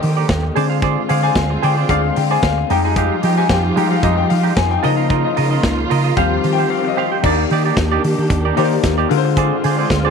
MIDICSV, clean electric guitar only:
0, 0, Header, 1, 3, 480
1, 0, Start_track
1, 0, Key_signature, -3, "major"
1, 0, Tempo, 534283
1, 742, Time_signature, 4, 2, 24, 8
1, 9076, End_track
2, 0, Start_track
2, 0, Title_t, "Clean electric guitar"
2, 0, Program_c, 0, 27
2, 150, Note_on_c, 0, 74, 62
2, 159, Note_on_c, 0, 67, 54
2, 166, Note_on_c, 0, 63, 49
2, 253, Note_off_c, 0, 63, 0
2, 259, Note_off_c, 0, 67, 0
2, 263, Note_off_c, 0, 74, 0
2, 499, Note_on_c, 0, 68, 82
2, 508, Note_on_c, 0, 72, 85
2, 513, Note_on_c, 0, 74, 97
2, 622, Note_off_c, 0, 74, 0
2, 624, Note_off_c, 0, 72, 0
2, 625, Note_on_c, 0, 77, 72
2, 629, Note_off_c, 0, 68, 0
2, 635, Note_on_c, 0, 72, 59
2, 640, Note_on_c, 0, 68, 58
2, 728, Note_off_c, 0, 68, 0
2, 736, Note_off_c, 0, 72, 0
2, 739, Note_on_c, 0, 68, 76
2, 744, Note_off_c, 0, 77, 0
2, 747, Note_on_c, 0, 72, 81
2, 753, Note_on_c, 0, 74, 83
2, 904, Note_off_c, 0, 68, 0
2, 907, Note_off_c, 0, 72, 0
2, 911, Note_off_c, 0, 74, 0
2, 979, Note_on_c, 0, 68, 65
2, 987, Note_on_c, 0, 72, 62
2, 994, Note_on_c, 0, 74, 67
2, 1093, Note_off_c, 0, 74, 0
2, 1101, Note_off_c, 0, 72, 0
2, 1104, Note_on_c, 0, 74, 61
2, 1107, Note_off_c, 0, 68, 0
2, 1112, Note_on_c, 0, 72, 56
2, 1118, Note_on_c, 0, 68, 50
2, 1212, Note_off_c, 0, 68, 0
2, 1217, Note_off_c, 0, 72, 0
2, 1221, Note_off_c, 0, 74, 0
2, 1460, Note_on_c, 0, 68, 92
2, 1467, Note_on_c, 0, 72, 81
2, 1475, Note_on_c, 0, 74, 102
2, 1580, Note_off_c, 0, 74, 0
2, 1587, Note_off_c, 0, 72, 0
2, 1591, Note_on_c, 0, 74, 65
2, 1594, Note_off_c, 0, 68, 0
2, 1597, Note_on_c, 0, 72, 59
2, 1605, Note_on_c, 0, 68, 49
2, 1688, Note_off_c, 0, 68, 0
2, 1695, Note_off_c, 0, 72, 0
2, 1699, Note_on_c, 0, 68, 70
2, 1703, Note_off_c, 0, 74, 0
2, 1706, Note_on_c, 0, 72, 75
2, 1714, Note_on_c, 0, 74, 95
2, 1822, Note_off_c, 0, 74, 0
2, 1831, Note_off_c, 0, 72, 0
2, 1863, Note_off_c, 0, 68, 0
2, 2073, Note_on_c, 0, 74, 57
2, 2080, Note_on_c, 0, 72, 54
2, 2087, Note_on_c, 0, 68, 50
2, 2175, Note_off_c, 0, 68, 0
2, 2181, Note_off_c, 0, 72, 0
2, 2185, Note_off_c, 0, 74, 0
2, 2426, Note_on_c, 0, 56, 72
2, 2433, Note_on_c, 0, 63, 83
2, 2441, Note_on_c, 0, 67, 79
2, 2551, Note_off_c, 0, 63, 0
2, 2552, Note_off_c, 0, 67, 0
2, 2555, Note_on_c, 0, 68, 79
2, 2558, Note_off_c, 0, 56, 0
2, 2561, Note_on_c, 0, 63, 65
2, 2569, Note_on_c, 0, 56, 57
2, 2651, Note_off_c, 0, 56, 0
2, 2661, Note_off_c, 0, 63, 0
2, 2662, Note_on_c, 0, 56, 73
2, 2669, Note_off_c, 0, 68, 0
2, 2672, Note_on_c, 0, 63, 83
2, 2677, Note_on_c, 0, 67, 81
2, 2825, Note_off_c, 0, 56, 0
2, 2830, Note_off_c, 0, 63, 0
2, 2833, Note_off_c, 0, 67, 0
2, 2901, Note_on_c, 0, 56, 64
2, 2912, Note_on_c, 0, 63, 61
2, 2918, Note_on_c, 0, 67, 70
2, 3021, Note_off_c, 0, 67, 0
2, 3028, Note_off_c, 0, 63, 0
2, 3031, Note_on_c, 0, 67, 74
2, 3033, Note_off_c, 0, 56, 0
2, 3039, Note_on_c, 0, 63, 63
2, 3045, Note_on_c, 0, 56, 61
2, 3130, Note_off_c, 0, 56, 0
2, 3138, Note_off_c, 0, 63, 0
2, 3141, Note_off_c, 0, 67, 0
2, 3378, Note_on_c, 0, 56, 103
2, 3387, Note_on_c, 0, 63, 99
2, 3393, Note_on_c, 0, 67, 103
2, 3496, Note_off_c, 0, 67, 0
2, 3505, Note_off_c, 0, 63, 0
2, 3507, Note_on_c, 0, 67, 72
2, 3510, Note_off_c, 0, 56, 0
2, 3515, Note_on_c, 0, 63, 64
2, 3520, Note_on_c, 0, 56, 59
2, 3608, Note_off_c, 0, 56, 0
2, 3615, Note_off_c, 0, 63, 0
2, 3619, Note_on_c, 0, 56, 89
2, 3622, Note_off_c, 0, 67, 0
2, 3626, Note_on_c, 0, 63, 79
2, 3633, Note_on_c, 0, 67, 78
2, 3735, Note_off_c, 0, 67, 0
2, 3747, Note_off_c, 0, 63, 0
2, 3784, Note_off_c, 0, 56, 0
2, 3983, Note_on_c, 0, 67, 61
2, 3992, Note_on_c, 0, 63, 60
2, 3999, Note_on_c, 0, 56, 50
2, 4084, Note_off_c, 0, 56, 0
2, 4088, Note_off_c, 0, 63, 0
2, 4092, Note_off_c, 0, 67, 0
2, 4337, Note_on_c, 0, 65, 101
2, 4343, Note_on_c, 0, 70, 104
2, 4351, Note_on_c, 0, 75, 102
2, 4462, Note_off_c, 0, 75, 0
2, 4463, Note_off_c, 0, 70, 0
2, 4465, Note_on_c, 0, 77, 66
2, 4468, Note_off_c, 0, 65, 0
2, 4473, Note_on_c, 0, 70, 62
2, 4479, Note_on_c, 0, 65, 52
2, 4569, Note_off_c, 0, 65, 0
2, 4577, Note_off_c, 0, 70, 0
2, 4580, Note_on_c, 0, 65, 79
2, 4584, Note_off_c, 0, 77, 0
2, 4588, Note_on_c, 0, 70, 88
2, 4594, Note_on_c, 0, 75, 78
2, 4744, Note_off_c, 0, 65, 0
2, 4748, Note_off_c, 0, 70, 0
2, 4752, Note_off_c, 0, 75, 0
2, 4819, Note_on_c, 0, 65, 71
2, 4825, Note_on_c, 0, 70, 72
2, 4831, Note_on_c, 0, 75, 74
2, 4937, Note_off_c, 0, 75, 0
2, 4945, Note_off_c, 0, 70, 0
2, 4948, Note_on_c, 0, 75, 64
2, 4952, Note_off_c, 0, 65, 0
2, 4955, Note_on_c, 0, 70, 53
2, 4964, Note_on_c, 0, 65, 53
2, 5055, Note_off_c, 0, 65, 0
2, 5060, Note_off_c, 0, 70, 0
2, 5066, Note_off_c, 0, 75, 0
2, 5302, Note_on_c, 0, 65, 83
2, 5309, Note_on_c, 0, 70, 96
2, 5317, Note_on_c, 0, 75, 86
2, 5416, Note_off_c, 0, 75, 0
2, 5426, Note_off_c, 0, 70, 0
2, 5427, Note_on_c, 0, 75, 72
2, 5430, Note_off_c, 0, 65, 0
2, 5437, Note_on_c, 0, 70, 61
2, 5441, Note_on_c, 0, 65, 56
2, 5539, Note_off_c, 0, 65, 0
2, 5543, Note_on_c, 0, 67, 79
2, 5545, Note_off_c, 0, 75, 0
2, 5549, Note_off_c, 0, 70, 0
2, 5553, Note_on_c, 0, 72, 81
2, 5558, Note_on_c, 0, 77, 102
2, 5665, Note_off_c, 0, 77, 0
2, 5674, Note_off_c, 0, 72, 0
2, 5706, Note_off_c, 0, 67, 0
2, 5912, Note_on_c, 0, 77, 59
2, 5919, Note_on_c, 0, 72, 55
2, 5927, Note_on_c, 0, 67, 58
2, 6018, Note_off_c, 0, 67, 0
2, 6024, Note_off_c, 0, 72, 0
2, 6027, Note_off_c, 0, 77, 0
2, 6264, Note_on_c, 0, 67, 93
2, 6271, Note_on_c, 0, 72, 106
2, 6279, Note_on_c, 0, 77, 109
2, 6389, Note_off_c, 0, 77, 0
2, 6392, Note_off_c, 0, 72, 0
2, 6393, Note_on_c, 0, 79, 78
2, 6397, Note_off_c, 0, 67, 0
2, 6403, Note_on_c, 0, 72, 56
2, 6408, Note_on_c, 0, 67, 55
2, 6504, Note_off_c, 0, 67, 0
2, 6507, Note_on_c, 0, 63, 86
2, 6508, Note_off_c, 0, 79, 0
2, 6512, Note_off_c, 0, 72, 0
2, 6516, Note_on_c, 0, 67, 85
2, 6522, Note_on_c, 0, 74, 96
2, 6668, Note_off_c, 0, 63, 0
2, 6672, Note_off_c, 0, 67, 0
2, 6675, Note_off_c, 0, 74, 0
2, 6748, Note_on_c, 0, 63, 69
2, 6756, Note_on_c, 0, 67, 64
2, 6763, Note_on_c, 0, 74, 67
2, 6866, Note_off_c, 0, 74, 0
2, 6873, Note_off_c, 0, 67, 0
2, 6876, Note_off_c, 0, 63, 0
2, 6877, Note_on_c, 0, 74, 70
2, 6884, Note_on_c, 0, 67, 62
2, 6889, Note_on_c, 0, 63, 52
2, 6975, Note_off_c, 0, 63, 0
2, 6980, Note_off_c, 0, 67, 0
2, 6985, Note_off_c, 0, 74, 0
2, 7112, Note_on_c, 0, 74, 82
2, 7120, Note_on_c, 0, 67, 81
2, 7126, Note_on_c, 0, 63, 76
2, 7214, Note_off_c, 0, 63, 0
2, 7220, Note_off_c, 0, 67, 0
2, 7224, Note_off_c, 0, 74, 0
2, 7592, Note_on_c, 0, 74, 62
2, 7599, Note_on_c, 0, 67, 57
2, 7608, Note_on_c, 0, 63, 52
2, 7688, Note_off_c, 0, 63, 0
2, 7695, Note_off_c, 0, 67, 0
2, 7698, Note_on_c, 0, 63, 81
2, 7703, Note_off_c, 0, 74, 0
2, 7706, Note_on_c, 0, 67, 87
2, 7714, Note_on_c, 0, 74, 81
2, 7819, Note_off_c, 0, 74, 0
2, 7830, Note_off_c, 0, 67, 0
2, 7863, Note_off_c, 0, 63, 0
2, 8065, Note_on_c, 0, 74, 75
2, 8073, Note_on_c, 0, 67, 80
2, 8079, Note_on_c, 0, 63, 63
2, 8180, Note_off_c, 0, 63, 0
2, 8181, Note_off_c, 0, 74, 0
2, 8183, Note_off_c, 0, 67, 0
2, 8421, Note_on_c, 0, 68, 82
2, 8429, Note_on_c, 0, 72, 78
2, 8436, Note_on_c, 0, 74, 89
2, 8584, Note_off_c, 0, 68, 0
2, 8588, Note_off_c, 0, 72, 0
2, 8591, Note_off_c, 0, 74, 0
2, 8663, Note_on_c, 0, 68, 69
2, 8671, Note_on_c, 0, 72, 66
2, 8677, Note_on_c, 0, 74, 65
2, 8782, Note_off_c, 0, 74, 0
2, 8788, Note_off_c, 0, 72, 0
2, 8792, Note_off_c, 0, 68, 0
2, 8792, Note_on_c, 0, 74, 63
2, 8799, Note_on_c, 0, 72, 60
2, 8805, Note_on_c, 0, 68, 58
2, 8893, Note_off_c, 0, 68, 0
2, 8898, Note_off_c, 0, 72, 0
2, 8906, Note_off_c, 0, 74, 0
2, 9028, Note_on_c, 0, 74, 95
2, 9038, Note_on_c, 0, 72, 81
2, 9043, Note_on_c, 0, 68, 73
2, 9076, Note_off_c, 0, 68, 0
2, 9076, Note_off_c, 0, 72, 0
2, 9076, Note_off_c, 0, 74, 0
2, 9076, End_track
3, 0, Start_track
3, 0, Title_t, "Muted clean electric guitar strokes"
3, 26, Note_on_c, 9, 29, 33
3, 116, Note_off_c, 9, 29, 0
3, 389, Note_on_c, 9, 29, 45
3, 479, Note_off_c, 9, 29, 0
3, 1232, Note_on_c, 9, 29, 43
3, 1322, Note_off_c, 9, 29, 0
3, 1349, Note_on_c, 9, 29, 50
3, 1439, Note_off_c, 9, 29, 0
3, 1832, Note_on_c, 9, 29, 48
3, 1922, Note_off_c, 9, 29, 0
3, 1943, Note_on_c, 9, 29, 42
3, 2033, Note_off_c, 9, 29, 0
3, 2191, Note_on_c, 9, 29, 40
3, 2281, Note_off_c, 9, 29, 0
3, 2316, Note_on_c, 9, 29, 44
3, 2406, Note_off_c, 9, 29, 0
3, 3149, Note_on_c, 9, 29, 42
3, 3238, Note_off_c, 9, 29, 0
3, 3266, Note_on_c, 9, 29, 53
3, 3356, Note_off_c, 9, 29, 0
3, 3746, Note_on_c, 9, 29, 44
3, 3836, Note_off_c, 9, 29, 0
3, 3857, Note_on_c, 9, 29, 42
3, 3947, Note_off_c, 9, 29, 0
3, 4221, Note_on_c, 9, 29, 39
3, 4311, Note_off_c, 9, 29, 0
3, 5070, Note_on_c, 9, 29, 45
3, 5160, Note_off_c, 9, 29, 0
3, 5189, Note_on_c, 9, 29, 42
3, 5279, Note_off_c, 9, 29, 0
3, 5676, Note_on_c, 9, 29, 41
3, 5766, Note_off_c, 9, 29, 0
3, 5788, Note_on_c, 9, 29, 48
3, 5878, Note_off_c, 9, 29, 0
3, 6029, Note_on_c, 9, 29, 37
3, 6119, Note_off_c, 9, 29, 0
3, 6151, Note_on_c, 9, 29, 50
3, 6241, Note_off_c, 9, 29, 0
3, 7354, Note_on_c, 9, 29, 44
3, 7444, Note_off_c, 9, 29, 0
3, 7466, Note_on_c, 9, 29, 43
3, 7556, Note_off_c, 9, 29, 0
3, 7830, Note_on_c, 9, 29, 46
3, 7920, Note_off_c, 9, 29, 0
3, 7944, Note_on_c, 9, 29, 44
3, 8034, Note_off_c, 9, 29, 0
3, 8184, Note_on_c, 9, 29, 46
3, 8274, Note_off_c, 9, 29, 0
3, 8309, Note_on_c, 9, 29, 58
3, 8399, Note_off_c, 9, 29, 0
3, 9076, End_track
0, 0, End_of_file